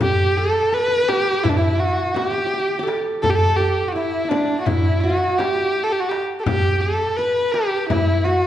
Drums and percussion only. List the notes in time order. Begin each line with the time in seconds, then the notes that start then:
0.01 frame drum, darbuka dum
0.39 darbuka ka
1.09 darbuka tek, frame drum
1.45 darbuka dum, frame drum
1.82 darbuka ka
2.16 darbuka tek, frame drum
2.52 darbuka ka
2.88 darbuka tek
3.24 frame drum, darbuka dum
3.61 darbuka ka
4.31 darbuka tek, frame drum
4.66 frame drum, darbuka dum
5.04 darbuka ka
5.39 darbuka tek, frame drum
5.75 darbuka ka
6.11 darbuka tek
6.46 frame drum, darbuka dum
6.84 darbuka ka
7.54 darbuka tek
7.90 frame drum, darbuka dum
8.27 darbuka ka